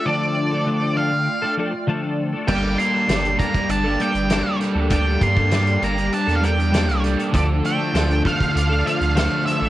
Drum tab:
CC |----------------|x---------------|----------------|----------------|
HH |----------------|--x-xxxxx-xxx-x-|x-x-xxxxxxxxxxxx|x-x-xxxxx-xxx-x-|
SD |----------------|----o-------o-o-|----o-------o-o-|----o-------o-o-|
BD |----------------|o-----oo--------|o-oo------------|o-----oo--------|